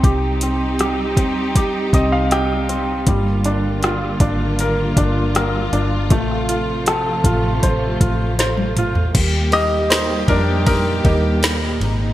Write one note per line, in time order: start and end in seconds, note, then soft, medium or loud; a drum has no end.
0.00 1.17 C2 medium
0.00 6.07 G3 medium
0.00 0.42 C4 medium
0.00 3.04 C4 medium
0.00 3.04 D#4 medium
0.00 3.04 G4 medium
0.00 kick medium
0.00 closed hi-hat medium
0.04 0.79 G4 soft
0.41 1.17 C4 soft
0.41 closed hi-hat medium
0.79 1.55 G4 soft
0.79 cross-stick medium
0.79 closed hi-hat medium
1.17 1.89 D2 medium
1.17 1.93 C4 soft
1.17 kick medium
1.17 closed hi-hat medium
1.55 2.31 G4 soft
1.55 kick medium
1.55 closed hi-hat medium
1.93 3.03 C2 medium
1.93 2.68 C4 soft
1.93 2.12 D#5 medium
1.93 kick medium
1.93 closed hi-hat medium
2.12 2.30 F5 medium
2.31 3.05 G4 soft
2.31 3.04 G5 medium
2.31 cross-stick medium
2.31 closed hi-hat medium
2.69 3.06 C4 medium
2.69 closed hi-hat medium
3.07 4.17 G1 medium
3.07 6.08 D3 medium
3.07 6.07 G3 medium
3.07 6.08 A#3 medium
3.07 9.11 F4 medium
3.07 kick medium
3.07 closed hi-hat medium
3.44 4.19 D4 medium
3.44 closed hi-hat medium
3.83 5.31 F4 soft
3.83 cross-stick medium
3.83 closed hi-hat medium
4.20 4.93 G#1 medium
4.20 4.96 D4 medium
4.20 kick medium
4.20 closed hi-hat medium
4.59 5.35 A#4 medium
4.59 closed hi-hat medium
4.97 5.69 G1 medium
4.97 5.72 D4 medium
4.97 kick medium
4.97 closed hi-hat medium
5.35 6.09 A#4 medium
5.35 cross-stick medium
5.35 closed hi-hat medium
5.72 6.10 G1 medium
5.72 6.10 D4 soft
5.72 closed hi-hat medium
6.10 7.21 A1 loud
6.10 9.11 C3 medium
6.10 9.11 F3 medium
6.10 9.12 A3 medium
6.10 9.11 A3 medium
6.10 kick loud
6.10 closed hi-hat medium
6.31 cross-stick soft
6.49 7.24 F4 soft
6.49 closed hi-hat medium
6.86 8.35 A4 medium
6.86 cross-stick loud
6.86 closed hi-hat medium
7.24 7.97 A1 medium
7.24 7.99 F4 medium
7.24 kick medium
7.24 closed hi-hat medium
7.63 8.38 C5 medium
7.63 kick medium
7.63 closed hi-hat medium
8.00 9.11 A1 medium
8.00 8.77 F4 soft
8.00 kick medium
8.00 closed hi-hat medium
8.39 9.13 C5 medium
8.39 snare medium
8.39 closed hi-hat medium
8.57 high tom medium
8.76 9.15 F4 medium
8.76 closed hi-hat medium
8.76 mid tom medium
8.95 floor tom medium
9.14 10.25 D#2 loud
9.14 12.13 A#2 medium
9.14 11.78 G3 medium
9.14 11.78 A#3 medium
9.14 11.78 G4 medium
9.14 kick loud
9.14 crash medium
9.14 ride medium
9.52 10.03 G3 medium
9.52 10.03 A#3 medium
9.52 9.89 D#4 medium
9.52 9.62 G4 medium
9.52 9.62 D#5 loud
9.52 ride medium
9.90 10.26 D#4 medium
9.90 10.30 C5 medium
9.90 snare loud
9.90 ride medium
10.28 11.00 F2 medium
10.28 10.38 D4 medium
10.28 10.37 A#4 medium
10.28 kick loud
10.28 ride medium
10.66 11.03 D#4 medium
10.66 11.76 A#4 medium
10.66 kick medium
10.66 ride medium
11.04 11.77 D#2 medium
11.04 11.39 G3 soft
11.04 11.39 A#3 soft
11.04 11.39 D#4 medium
11.04 kick medium
11.04 ride medium
11.43 snare loud
11.43 ride medium
11.80 12.13 G#1 medium
11.80 12.13 C3 medium
11.80 12.13 G#3 medium
11.80 12.13 D#4 medium
11.80 ride medium